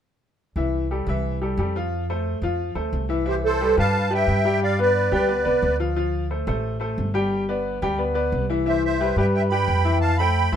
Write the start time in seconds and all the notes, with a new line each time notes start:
0.56 C2 E3 E4 E5
0.91 G3 G4 A4
1.07 C2 E3 E4 E5
1.41 G3 G4 A4
1.57 F2 G3 G4 A4
1.76 F3 F4 F5
2.10 A3 A4 C5
2.42 F2 F3 F4 F5
2.75 D2 A3 A4 C5
2.93 C2
3.09 E3 E4 E5
3.26 E3 E4 G4 C5 E5
3.45 A4 C5
3.61 G3 G4 B4
3.77 G2 G3 G4 B4 F5 A5
4.10 G3 G4 B4 E5
4.15 G5
4.27 G2
4.45 G3 G4 G5
4.63 D5 F5
4.79 B3 B4 D5
5.12 D2 G3 G4 B4 D5 G5
5.28 B3 B4 D5
5.45 C2 B3 B4 D5
5.62 D2
5.80 F3 F4 F5
5.96 F3 F4 F5
6.30 A3 A4 C5
6.47 A1 A3 A4 C5
6.80 A3 A4 C5
6.98 G1
7.14 G3 G4 G5
7.49 B3 B4 D5
7.82 D2 G3 G4 G5
7.98 B3 B4 D5
8.14 B3 B4 D5
8.32 C2
8.50 E3 E4 E5
8.66 E3 E4 C5 E5
8.85 C5 E5
9.00 G3 G4 B4
9.16 G2 G3 G4 B4 E5 G5
9.34 E5 G5
9.50 G3 G4 B4 G5 B5
9.68 F2
9.85 E3 E4 E5
10.01 F5 A5
10.18 A3 A4 C5 G5 B5
10.52 C2 E3 E4 E5 C6